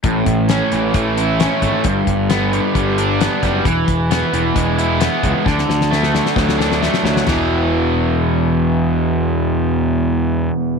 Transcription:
<<
  \new Staff \with { instrumentName = "Overdriven electric guitar" } { \clef bass \time 4/4 \key a \major \tempo 4 = 133 a,4 cis'8 e8 a8 e'8 cis'8 a8 | g,4 b8 d8 g8 d'8 b8 g8 | e4 b8 e8 gis8 e'8 b8 gis8 | d4 a8 d8 fis8 d'8 a8 fis8 |
<e, b, e>1~ | <e, b, e>1 | }
  \new Staff \with { instrumentName = "Picked electric bass" } { \clef bass \time 4/4 \key a \major a,,8 a,,4 a,,8 a,,4. gis,,16 r16 | g,,8 g,,4. g,,4. fis,,8 | e,,8 e,,4 e,,8 e,,4. cis,16 r16 | d,8 d,4. d,4. d,8 |
e,,1~ | e,,1 | }
  \new DrumStaff \with { instrumentName = "Drums" } \drummode { \time 4/4 <hh bd>8 <hh bd>8 <hh sn>8 hh8 <hh bd>8 hh8 <hh sn>8 <hh bd>8 | <hh bd>8 <hh bd>8 <hh sn>8 hh8 <hh bd>8 hh8 <hh sn>8 <hh bd sn>8 | <hh bd>8 <hh bd>8 <hh sn>8 hh8 <hh bd>8 hh8 <hh sn>8 <hh bd>8 | <bd sn>16 sn16 sn16 sn16 sn16 sn16 sn16 sn16 <bd sn>16 sn16 sn16 sn16 sn16 sn16 sn16 sn16 |
<cymc sn tomfh>4 r4 r4 r4 | r4 r4 r4 r4 | }
>>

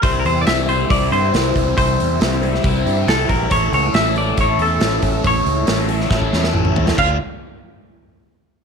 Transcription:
<<
  \new Staff \with { instrumentName = "Tonewheel organ" } { \time 4/4 \key c \mixolydian \tempo 4 = 138 <c'' e'' g'' e'''>1~ | <c'' e'' g'' e'''>1 | <cis'' e'' a'' e'''>1~ | <cis'' e'' a'' e'''>1 |
<a f' d'' f''>8 r2. r8 | }
  \new Staff \with { instrumentName = "Clean electric guitar" } { \time 4/4 \key c \mixolydian c''16. bes'32 c''16. d''32 e''8 c''8 d''8 c''4. | c''2. a'8 bes'8 | cis''8 cis''8 e''8 d''8 cis''8 a'4. | cis''2.~ cis''8 r8 |
f''8 r2. r8 | }
  \new Staff \with { instrumentName = "Overdriven electric guitar" } { \time 4/4 \key c \mixolydian <g c' e'>4 <g c' e'>8 <c' e'>8 <g c' e'>4 <g c' e'>8 <c' e'>8 | <g c' e'>4 <g c' e'>8 <c' e'>8 <g c' e'>4 <g c' e'>8 <c' e'>8 | <cis' e' a'>4 <cis' e' a'>8 <e' a'>8 <cis' e' a'>4 <cis' e' a'>8 <e' a'>8 | <cis' e' a'>4 <cis' e' a'>8 <e' a'>8 <cis' e' a'>4 <cis' e' a'>8 <e' a'>8 |
<f a d' f'>8 r2. r8 | }
  \new Staff \with { instrumentName = "Overdriven electric guitar" } { \clef bass \time 4/4 \key c \mixolydian c4 e8 g8 e'8 c'8 e8 g8 | c4 e8 g8 e'8 c'8 e8 g8 | a,4 e8 a8 e'8 cis'8 e8 a8 | a,4 e8 a8 e'8 cis'8 e8 a8 |
<d a d' f'>8 r2. r8 | }
  \new Staff \with { instrumentName = "Fingered electric bass" } { \clef bass \time 4/4 \key c \mixolydian c,8 e,8 c,4 c,8 g,8 c,8 c,8 | c,8 e,8 c,4 c,8 g,8 c,8 bes,,8 | a,,8 cis,8 a,,4 a,,8 e,8 a,,8 a,,8 | a,,8 cis,8 a,,4 a,,8 e,8 a,,8 e,8 |
d,8 r2. r8 | }
  \new DrumStaff \with { instrumentName = "Drums" } \drummode { \time 4/4 <hho bd>8 hho8 <hho sn>8 hho8 <hho bd>8 hho8 <hho sn>8 <hho bd>8 | <hho bd>8 hho8 <hho sn>8 hho16 sn16 <hho bd>8 hho8 <hho sn>8 <hho bd>8 | <hho bd>8 hho8 <hho sn>8 hho8 <hho bd>8 hho8 <hho sn>8 <hho bd>8 | <hho bd>8 hho8 <hho sn>8 hho16 sn16 <bd sn>16 bd16 sn16 sn16 toml16 toml16 tomfh16 sn16 |
<cymc bd>4 r4 r4 r4 | }
>>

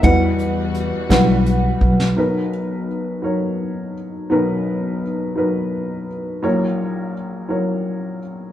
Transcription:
<<
  \new Staff \with { instrumentName = "Nylon-string guitar" } { \time 6/8 \key b \major \tempo 4. = 56 fis''2 r4 | r2. | r2. | r2. | }
  \new Staff \with { instrumentName = "Felt piano" } { \time 6/8 \key b \major <cis'' dis'' fis''>4. fis''4.~ | fis''8 r2 r8 | r2. | r2. | }
  \new Staff \with { instrumentName = "Upright piano" } { \time 6/8 \key b \major <g e' fis' b'>4 r8 <g e' fis' b'>4 r8 | <fis dis' ais' b'>4 r8 <fis dis' ais' cis''>4 r8 | <fis dis' ais' b'>4 r8 <fis dis' ais' b'>4 r8 | <fis e' ais' cis''>4 r8 <fis e' ais' cis''>4 r8 | }
  \new Staff \with { instrumentName = "Upright piano" } { \clef bass \time 6/8 \key b \major <e, e>2. | <b,, b,>2. | <b,, b,>2. | <ais,, ais,>2. | }
  \new Staff \with { instrumentName = "String section" } { \clef bass \time 6/8 \key b \major <e g fis'>2. | r2. | r2. | r2. | }
  \new Staff \with { instrumentName = "Upright bass" } { \clef bass \time 6/8 \key b \major e,4. b,,4 b,,8 | r2. | r2. | r2. | }
  \new DrumStaff \with { instrumentName = "Drums" } \drummode { \time 6/8 <hh bd>8 hh8 hh8 <hh bd sn>8 hh8 bd16 sn16 | r4. r4. | r4. r4. | r4. r4. | }
>>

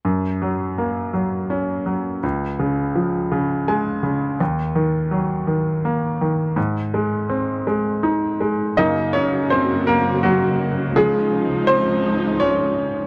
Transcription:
<<
  \new Staff \with { instrumentName = "Grand piano" } { \time 6/8 \key ges \lydian \tempo 4. = 55 r2. | r2 aes''4 | r2. | r2. |
<ees' ees''>8 <des' des''>8 <c' c''>8 <bes bes'>8 <ges ges'>4 | <aes aes'>4 <c' c''>4 <des' des''>4 | }
  \new Staff \with { instrumentName = "Grand piano" } { \clef bass \time 6/8 \key ges \lydian ges,8 ges8 bes8 ges8 des'8 ges8 | des,8 des8 f8 des8 aes8 des8 | ees,8 ees8 ges8 ees8 bes8 ees8 | aes,8 aes8 c'8 aes8 ees'8 aes8 |
<ges, des bes>4. r4. | <des f>2. | }
  \new Staff \with { instrumentName = "String section" } { \clef bass \time 6/8 \key ges \lydian << { r2. | r2. | r2. | r2. |
<ges, bes ges'>2. | <des, f ees'>2. | } \\ { r2. | r2. | r2. | r2. |
des2.~ | des2. | } >> }
>>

